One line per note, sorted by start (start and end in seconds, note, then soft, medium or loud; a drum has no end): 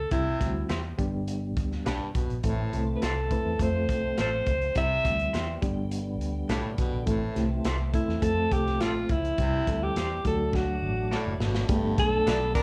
0.00 0.11 A4 loud
0.11 0.34 C2 loud
0.11 0.52 C3 medium
0.11 0.26 G3 medium
0.11 0.26 C4 medium
0.11 0.26 E4 medium
0.11 0.66 E4 medium
0.11 0.27 G4 medium
0.11 kick loud
0.11 closed hi-hat medium
0.40 0.63 D2 medium
0.40 0.70 G3 medium
0.40 0.70 C4 medium
0.40 0.70 E4 medium
0.40 0.70 F#4 medium
0.40 kick medium
0.40 snare soft
0.40 closed hi-hat medium
0.69 0.92 E2 medium
0.69 0.80 E4 medium
0.69 0.80 G4 medium
0.69 0.80 C5 medium
0.69 snare loud
0.69 closed hi-hat medium
0.98 1.57 G1 medium
0.98 1.91 G3 medium
0.98 1.91 B3 medium
0.98 1.91 D4 medium
0.98 1.91 G4 loud
0.98 kick loud
0.98 closed hi-hat medium
1.28 closed hi-hat medium
1.57 1.79 D2 medium
1.57 kick loud
1.57 closed hi-hat medium
1.72 snare soft
1.86 1.97 B1 medium
1.86 2.09 G2 medium
1.86 1.96 D4 medium
1.86 1.96 G4 medium
1.86 1.96 B4 medium
1.86 snare loud
1.86 closed hi-hat medium
2.15 2.26 B1 medium
2.15 2.38 B2 medium
2.15 kick medium
2.15 closed hi-hat medium
2.30 2.41 A#1 medium
2.30 closed hi-hat soft
2.43 2.66 A1 loud
2.43 2.84 A2 medium
2.43 3.58 E3 medium
2.43 4.73 A3 medium
2.43 2.59 A3 medium
2.43 5.59 C4 medium
2.43 2.59 C4 medium
2.43 2.59 E4 medium
2.43 2.59 A4 medium
2.43 kick medium
2.43 closed hi-hat medium
2.73 2.95 C2 medium
2.73 3.03 A3 medium
2.73 3.03 C4 medium
2.73 3.03 E4 medium
2.73 3.03 A4 medium
2.73 closed hi-hat medium
2.96 3.05 B4 medium
3.02 3.36 C2 medium
3.02 3.12 E4 medium
3.02 3.12 A4 medium
3.02 3.63 A4 medium
3.02 3.13 C5 medium
3.02 snare loud
3.02 closed hi-hat medium
3.31 3.59 A3 medium
3.31 3.59 C4 medium
3.31 3.60 E4 medium
3.31 3.60 B4 medium
3.31 kick medium
3.31 closed hi-hat medium
3.45 3.57 E2 medium
3.59 3.89 F2 medium
3.59 4.74 F3 medium
3.59 4.53 A3 medium
3.59 4.53 C4 medium
3.59 4.53 F4 medium
3.59 4.53 A4 medium
3.59 4.19 C5 medium
3.59 kick medium
3.59 closed hi-hat medium
3.89 4.11 C2 medium
3.89 kick medium
3.89 closed hi-hat medium
4.17 4.40 A1 medium
4.17 4.28 F4 medium
4.17 4.28 A4 medium
4.17 4.28 C5 medium
4.17 4.73 C5 medium
4.17 snare loud
4.17 closed hi-hat medium
4.46 4.69 C#2 medium
4.46 kick medium
4.46 closed hi-hat medium
4.62 closed hi-hat soft
4.75 4.98 C2 medium
4.75 5.17 C3 medium
4.75 5.62 E3 medium
4.75 7.05 G3 medium
4.75 4.91 G3 medium
4.75 4.91 C4 medium
4.75 4.91 E4 medium
4.75 4.91 G4 medium
4.75 5.59 E5 loud
4.75 kick loud
4.75 closed hi-hat medium
5.04 5.27 D2 medium
5.04 5.34 G3 medium
5.04 5.34 C4 medium
5.04 5.34 E4 medium
5.04 5.34 G4 medium
5.04 kick medium
5.04 snare soft
5.04 closed hi-hat medium
5.19 closed hi-hat soft
5.33 5.56 E2 medium
5.33 5.44 E4 medium
5.33 5.44 G4 medium
5.33 5.44 C5 medium
5.33 snare loud
5.33 closed hi-hat medium
5.62 6.20 G1 medium
5.62 7.06 D3 medium
5.62 6.55 G3 medium
5.62 6.55 B3 medium
5.62 7.06 B3 medium
5.62 6.55 D4 medium
5.62 6.55 G4 loud
5.62 kick loud
5.62 closed hi-hat medium
5.91 closed hi-hat medium
6.20 6.42 D2 medium
6.20 closed hi-hat medium
6.49 6.60 B1 medium
6.49 6.72 A2 medium
6.49 6.60 D4 medium
6.49 6.60 G4 medium
6.49 6.60 B4 medium
6.49 snare medium
6.49 closed hi-hat medium
6.78 6.89 B1 medium
6.78 7.01 B2 medium
6.78 kick medium
6.78 closed hi-hat medium
6.93 7.04 A#1 medium
7.06 7.29 A1 loud
7.06 7.48 A2 medium
7.06 8.22 E3 medium
7.06 7.22 A3 medium
7.06 9.36 A3 medium
7.06 7.22 C4 medium
7.06 10.22 C4 medium
7.06 7.22 E4 medium
7.06 7.22 A4 medium
7.06 kick medium
7.06 closed hi-hat medium
7.35 7.59 C2 loud
7.35 7.65 A3 medium
7.35 7.65 C4 medium
7.35 7.66 E4 medium
7.35 7.65 G4 medium
7.35 snare soft
7.35 closed hi-hat medium
7.64 7.98 C2 loud
7.64 7.75 E4 medium
7.64 7.76 A4 medium
7.64 7.76 C5 medium
7.64 snare loud
7.64 closed hi-hat medium
7.94 8.21 A3 medium
7.94 8.21 C4 medium
7.94 8.23 E4 medium
7.94 8.24 E4 medium
7.94 8.21 A4 medium
7.94 kick medium
7.94 closed hi-hat medium
8.08 8.19 E2 medium
8.08 snare soft
8.22 8.45 F2 loud
8.22 9.37 F3 medium
8.22 9.15 A3 medium
8.22 9.15 C4 medium
8.22 9.15 F4 medium
8.22 9.15 A4 medium
8.22 8.54 A4 loud
8.22 kick medium
8.22 closed hi-hat medium
8.51 8.81 C2 loud
8.51 8.83 G4 loud
8.51 kick medium
8.51 closed hi-hat medium
8.66 snare soft
8.80 9.03 A1 medium
8.80 8.91 F4 medium
8.80 9.12 F4 medium
8.80 8.91 A4 loud
8.80 8.91 C5 medium
8.80 snare medium
8.80 closed hi-hat medium
9.09 9.32 C#2 medium
9.09 9.85 E4 loud
9.09 kick medium
9.09 closed hi-hat medium
9.25 closed hi-hat soft
9.38 9.61 C2 loud
9.38 9.79 C3 medium
9.38 10.24 E3 medium
9.38 10.24 G3 medium
9.38 9.53 G3 medium
9.38 9.53 C4 medium
9.38 9.53 E4 medium
9.38 9.53 G4 medium
9.38 kick loud
9.38 closed hi-hat medium
9.67 9.90 D2 loud
9.67 9.97 G3 medium
9.67 9.97 C4 medium
9.67 9.97 E4 medium
9.67 9.97 A4 medium
9.67 kick medium
9.67 snare soft
9.67 closed hi-hat medium
9.83 10.26 G4 loud
9.96 10.18 E2 loud
9.96 10.06 E4 medium
9.96 10.07 G4 loud
9.96 10.07 C5 loud
9.96 snare loud
9.96 closed hi-hat medium
10.25 10.84 D2 loud
10.25 11.17 F#3 medium
10.25 11.67 F#3 medium
10.25 11.17 A3 medium
10.25 11.67 A3 medium
10.25 11.17 D4 medium
10.25 11.67 D4 medium
10.25 11.17 F#4 medium
10.25 10.57 A4 medium
10.25 kick medium
10.25 closed hi-hat medium
10.53 11.41 F#4 medium
10.53 kick medium
10.53 snare medium
10.82 11.16 A1 medium
11.11 11.34 A2 medium
11.11 11.21 F#4 medium
11.11 11.22 A4 medium
11.11 11.22 D5 medium
11.11 snare medium
11.26 11.37 F#1 medium
11.40 11.62 G#1 medium
11.40 11.63 B2 medium
11.40 snare loud
11.55 snare medium
11.68 11.91 G1 loud
11.68 12.10 G2 medium
11.68 12.63 G3 medium
11.68 12.63 A3 medium
11.68 12.28 A3 medium
11.68 12.63 B3 medium
11.68 12.28 B3 medium
11.68 12.28 D4 medium
11.68 12.28 G4 medium
11.68 11.76 G#4 medium
11.68 kick loud
11.68 closed hi-hat medium
11.76 12.31 A4 medium
11.98 12.20 B1 medium
11.98 12.52 A4 loud
11.98 kick loud
11.98 closed hi-hat medium
12.26 12.60 B1 loud
12.26 12.38 B2 medium
12.26 12.38 A3 medium
12.26 12.38 D4 loud
12.26 12.37 D4 medium
12.26 12.37 A4 medium
12.26 12.37 B4 loud
12.26 snare loud
12.26 closed hi-hat loud
12.55 12.63 B2 medium
12.55 12.63 A3 medium
12.55 12.63 D4 loud
12.55 12.63 B4 loud
12.55 kick medium
12.55 closed hi-hat medium